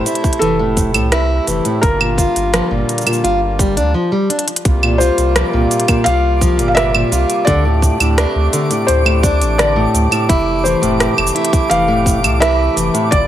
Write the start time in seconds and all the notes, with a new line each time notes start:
Already playing: C3 A3 E4 C5
0.06 E4, closed hi-hat, shaker
0.15 closed hi-hat
0.24 kick, shaker
0.33 closed hi-hat
0.39 F1 E3 A4, closed hi-hat, shaker
0.59 A2
0.77 kick, closed hi-hat, shaker
0.94 C2 A2, closed hi-hat, claves, shaker
1.12 E4, cross-stick, closed hi-hat, shaker
1.47 F1 E3, closed hi-hat, shaker
1.65 A2, closed hi-hat, shaker
1.81 G1 D3 G3 A#3 F4 A#4, kick, closed hi-hat, shaker
2.00 A#2, claves
2.18 F4, kick, closed hi-hat, shaker
2.36 G1, closed hi-hat, shaker
2.53 F3, cross-stick, closed hi-hat, shaker
2.71 G1 A#2
2.89 closed hi-hat, shaker
2.98 closed hi-hat, shaker
3.06 A#2, closed hi-hat, claves, shaker
3.13 shaker
3.24 G1 F4, closed hi-hat, shaker
3.59 G3, kick, closed hi-hat, shaker
3.77 D2 D4, closed hi-hat, shaker
3.94 F3
4.12 G3
4.30 D4, closed hi-hat
4.39 closed hi-hat
4.48 closed hi-hat
4.56 closed hi-hat
4.65 C2 C3 G3 A#3 F4 D6, kick, closed hi-hat, shaker
4.83 A#2, claves
4.98 F4 C5, shaker
5.18 C2, closed hi-hat, shaker
5.36 F3, cross-stick, closed hi-hat, shaker
5.53 C2 A#2
5.71 closed hi-hat, shaker
5.80 closed hi-hat
5.88 A#2, kick, closed hi-hat, claves, shaker
6.04 C2 F4 F5, closed hi-hat, shaker
6.41 F3, kick, closed hi-hat, shaker
6.59 G1 A#2, closed hi-hat, shaker
6.68 F5
6.75 E5, cross-stick, closed hi-hat, shaker
6.95 A#2, claves
7.12 C2 F4, closed hi-hat, shaker
7.30 closed hi-hat, shaker
7.45 D2 D3 A3 D4 D5, kick, closed hi-hat, shaker
7.65 A2
7.82 kick, shaker
8.00 D2 A2, closed hi-hat, claves, shaker
8.18 D4, cross-stick, closed hi-hat, shaker
8.35 D2
8.53 D3, closed hi-hat, shaker
8.71 A2, closed hi-hat, shaker
8.87 D2 C5, closed hi-hat, shaker
9.06 A2, claves
9.23 D4, kick, closed hi-hat, shaker
9.41 A1, closed hi-hat, shaker
9.58 D3 D5, cross-stick, closed hi-hat, shaker
9.76 A2
9.94 D2, closed hi-hat, shaker
10.11 A2, closed hi-hat, claves, shaker
10.29 F1 E3 A3 E4, kick, closed hi-hat, shaker
10.64 E3 C5, shaker
10.82 F1 A2, closed hi-hat, shaker
11.00 cross-stick, closed hi-hat, shaker
11.17 F1 A2, claves
11.27 shaker
11.35 E4, closed hi-hat
11.45 closed hi-hat
11.53 kick, closed hi-hat, shaker
11.70 F1 E3 F5, closed hi-hat, shaker
11.88 A2
12.06 kick, closed hi-hat, shaker
12.23 C2 A2, closed hi-hat, claves, shaker
12.40 E4 E5, cross-stick, closed hi-hat, shaker
12.76 F1 E3, closed hi-hat, shaker
12.94 A2, closed hi-hat, shaker
13.11 G1 D3 G3 A#3 F4 D5, kick, closed hi-hat, shaker